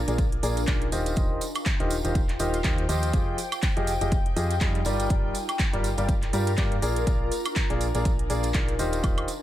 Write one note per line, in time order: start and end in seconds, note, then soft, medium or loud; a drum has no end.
0.00 1.82 D4 medium
0.00 1.82 A#4 medium
0.08 0.41 A#1 loud
0.08 0.22 A#3 medium
0.08 0.22 F4 medium
0.08 0.22 G#4 medium
0.08 0.22 A#4 medium
0.08 0.22 D5 medium
0.08 closed hi-hat soft
0.08 tambourine medium
0.18 kick loud
0.18 closed hi-hat medium
0.18 tambourine soft
0.32 closed hi-hat soft
0.43 0.65 A#1 loud
0.43 0.60 A#3 medium
0.43 0.60 F4 medium
0.43 0.60 G#4 medium
0.43 0.60 A#4 medium
0.43 0.60 D5 loud
0.43 open hi-hat loud
0.43 tambourine medium
0.57 closed hi-hat soft
0.57 tambourine medium
0.67 0.90 A#1 medium
0.67 0.84 D#3 loud
0.67 0.84 F4 medium
0.67 0.84 G#4 medium
0.67 0.84 A#4 medium
0.67 0.84 D5 loud
0.67 kick loud
0.67 clap loud
0.67 closed hi-hat medium
0.82 closed hi-hat soft
0.92 1.15 D#1 medium
0.92 1.14 D#3 medium
0.92 1.14 F4 medium
0.92 3.83 F4 medium
0.92 1.14 G4 medium
0.92 1.14 C5 medium
0.92 1.14 D#5 loud
0.92 open hi-hat loud
0.92 tambourine medium
1.06 closed hi-hat medium
1.06 tambourine soft
1.16 1.39 D#1 loud
1.16 1.41 D#3 medium
1.16 1.41 F4 medium
1.16 1.42 C5 medium
1.16 6.82 G5 medium
1.16 kick loud
1.16 closed hi-hat medium
1.16 tambourine soft
1.41 3.83 C5 medium
1.41 open hi-hat loud
1.41 tambourine medium
1.55 closed hi-hat soft
1.55 tambourine soft
1.55 high woodblock medium
1.66 kick loud
1.66 clap loud
1.66 closed hi-hat medium
1.80 2.02 D#1 loud
1.80 1.94 D#3 medium
1.80 1.94 F4 medium
1.80 1.94 G4 medium
1.80 1.94 C5 medium
1.80 1.94 D#5 loud
1.80 closed hi-hat soft
1.90 open hi-hat medium
1.90 tambourine medium
2.04 2.38 D#1 medium
2.04 2.19 D#3 medium
2.04 2.19 F4 medium
2.04 2.19 G4 medium
2.04 2.19 C5 medium
2.04 2.19 D#5 medium
2.04 closed hi-hat soft
2.04 tambourine soft
2.15 kick loud
2.15 closed hi-hat medium
2.15 tambourine soft
2.29 clap soft
2.29 closed hi-hat soft
2.39 2.62 D#1 medium
2.39 2.56 D#3 medium
2.39 2.56 F4 medium
2.39 2.56 G4 medium
2.39 2.56 C5 medium
2.39 2.56 D#5 loud
2.39 open hi-hat loud
2.39 tambourine loud
2.53 closed hi-hat soft
2.53 tambourine soft
2.64 2.87 D#2 medium
2.64 2.81 D#3 medium
2.64 2.81 F4 medium
2.64 2.81 G4 medium
2.64 2.81 C5 medium
2.64 2.81 D#5 loud
2.64 kick loud
2.64 clap loud
2.64 closed hi-hat medium
2.64 tambourine soft
2.78 closed hi-hat soft
2.89 3.11 D#2 medium
2.89 3.11 F3 medium
2.89 3.11 F4 medium
2.89 3.11 G4 medium
2.89 3.11 C5 medium
2.89 3.11 D#5 medium
2.89 open hi-hat medium
2.89 tambourine medium
3.03 closed hi-hat soft
3.03 tambourine soft
3.13 3.36 F1 medium
3.13 3.38 F3 medium
3.13 4.86 D#4 medium
3.13 3.38 F4 medium
3.13 3.38 G4 medium
3.13 3.38 G#4 medium
3.13 kick loud
3.13 closed hi-hat medium
3.13 tambourine soft
3.38 open hi-hat loud
3.38 tambourine medium
3.52 closed hi-hat soft
3.52 tambourine soft
3.52 high woodblock medium
3.62 kick loud
3.62 clap loud
3.62 closed hi-hat medium
3.62 tambourine soft
3.77 3.98 F1 loud
3.77 3.91 F3 medium
3.77 3.91 F4 medium
3.77 3.91 G4 medium
3.77 3.91 G#4 medium
3.77 3.91 D#5 loud
3.77 closed hi-hat soft
3.87 open hi-hat medium
3.87 tambourine medium
4.01 4.34 F1 medium
4.01 4.15 F3 medium
4.01 4.15 F4 medium
4.01 4.15 G4 medium
4.01 4.15 G#4 medium
4.01 4.15 D#5 medium
4.01 closed hi-hat soft
4.01 tambourine soft
4.12 kick loud
4.12 closed hi-hat medium
4.12 tambourine soft
4.26 closed hi-hat soft
4.36 4.59 F2 loud
4.36 4.53 F3 medium
4.36 4.53 F4 medium
4.36 4.53 G4 medium
4.36 4.53 G#4 medium
4.36 4.53 D#5 loud
4.36 open hi-hat loud
4.36 tambourine medium
4.51 closed hi-hat soft
4.51 tambourine soft
4.61 4.83 F2 medium
4.61 4.78 G3 medium
4.61 4.78 F4 medium
4.61 4.78 G4 medium
4.61 4.78 G#4 medium
4.61 4.78 D#5 loud
4.61 kick loud
4.61 clap loud
4.61 closed hi-hat medium
4.61 tambourine soft
4.75 closed hi-hat soft
4.85 5.08 G1 medium
4.85 5.08 G3 medium
4.85 7.62 F4 loud
4.85 5.08 F4 medium
4.85 5.08 G4 medium
4.85 5.08 A#4 medium
4.85 5.08 D5 loud
4.85 open hi-hat medium
4.85 tambourine medium
5.00 closed hi-hat soft
5.00 tambourine medium
5.10 5.33 G1 loud
5.10 5.35 G3 medium
5.10 5.35 F4 medium
5.10 5.35 G4 medium
5.10 5.35 A#4 medium
5.10 5.35 D5 medium
5.10 kick loud
5.10 closed hi-hat medium
5.10 tambourine soft
5.34 9.42 A#4 medium
5.34 open hi-hat loud
5.34 tambourine medium
5.49 closed hi-hat soft
5.49 tambourine soft
5.49 high woodblock medium
5.59 kick loud
5.59 clap loud
5.59 closed hi-hat medium
5.59 tambourine soft
5.73 5.95 G1 loud
5.73 5.88 G3 medium
5.73 5.88 F4 medium
5.73 5.88 G4 medium
5.73 5.88 A#4 medium
5.73 5.88 D5 loud
5.73 closed hi-hat soft
5.84 open hi-hat medium
5.84 tambourine medium
5.97 6.31 G1 loud
5.97 6.12 G3 medium
5.97 6.12 F4 medium
5.97 6.12 G4 medium
5.97 6.12 A#4 medium
5.97 6.12 D5 medium
5.97 closed hi-hat medium
5.97 tambourine soft
6.09 kick loud
6.09 closed hi-hat medium
6.09 tambourine soft
6.22 clap soft
6.22 closed hi-hat soft
6.33 6.56 G2 loud
6.33 6.50 G3 medium
6.33 6.50 F4 medium
6.33 6.50 G4 medium
6.33 6.50 A#4 medium
6.33 6.50 D5 loud
6.33 open hi-hat loud
6.33 tambourine medium
6.47 closed hi-hat soft
6.47 tambourine soft
6.58 6.80 G2 loud
6.58 6.74 A#3 loud
6.58 6.74 F4 medium
6.58 6.74 G4 medium
6.58 6.74 A#4 medium
6.58 6.74 D5 loud
6.58 kick loud
6.58 clap loud
6.58 closed hi-hat medium
6.58 tambourine soft
6.72 closed hi-hat soft
6.82 7.05 A#1 medium
6.82 7.04 A#3 medium
6.82 9.42 D4 medium
6.82 7.04 F4 medium
6.82 7.04 G#4 medium
6.82 7.04 A#4 medium
6.82 7.04 D5 loud
6.82 open hi-hat medium
6.82 tambourine medium
6.96 closed hi-hat soft
6.96 tambourine soft
7.07 7.29 A#1 loud
7.07 7.32 F4 medium
7.07 7.32 G#4 medium
7.07 kick loud
7.07 closed hi-hat medium
7.07 tambourine soft
7.32 open hi-hat loud
7.32 tambourine medium
7.45 closed hi-hat medium
7.45 tambourine medium
7.45 high woodblock medium
7.56 kick loud
7.56 clap loud
7.56 closed hi-hat medium
7.70 7.92 A#1 loud
7.70 7.84 A#3 medium
7.70 7.84 F4 medium
7.70 7.84 G#4 medium
7.70 7.84 A#4 medium
7.70 7.84 D5 loud
7.70 closed hi-hat soft
7.81 open hi-hat medium
7.81 tambourine medium
7.95 8.28 A#1 loud
7.95 8.09 A#3 medium
7.95 8.09 F4 medium
7.95 8.09 G#4 medium
7.95 8.09 A#4 medium
7.95 8.09 D5 medium
7.95 closed hi-hat medium
7.95 tambourine medium
8.05 kick loud
8.05 closed hi-hat medium
8.05 tambourine soft
8.19 closed hi-hat soft
8.30 8.52 A#1 loud
8.30 8.47 A#3 medium
8.30 8.47 F4 medium
8.30 8.47 G#4 medium
8.30 8.47 A#4 medium
8.30 8.47 D5 loud
8.30 open hi-hat loud
8.30 tambourine medium
8.43 closed hi-hat medium
8.43 tambourine medium
8.54 8.77 A#1 medium
8.54 8.71 D#3 loud
8.54 8.71 F4 medium
8.54 8.71 G#4 medium
8.54 8.71 A#4 medium
8.54 8.71 D5 loud
8.54 kick loud
8.54 clap loud
8.54 closed hi-hat medium
8.68 closed hi-hat soft
8.79 9.02 D#1 medium
8.79 9.01 D#3 medium
8.79 9.42 F4 medium
8.79 9.01 F4 medium
8.79 9.01 G4 medium
8.79 9.01 C5 medium
8.79 9.01 D#5 loud
8.79 open hi-hat medium
8.79 tambourine medium
8.93 closed hi-hat medium
8.93 tambourine soft
9.03 9.26 D#1 loud
9.03 9.28 D#3 medium
9.03 9.28 F4 medium
9.03 9.28 G4 medium
9.03 9.28 C5 medium
9.03 9.28 D#5 medium
9.03 kick loud
9.03 closed hi-hat medium
9.03 tambourine soft
9.03 high woodblock medium
9.18 closed hi-hat soft
9.18 high woodblock medium
9.28 open hi-hat loud
9.28 tambourine medium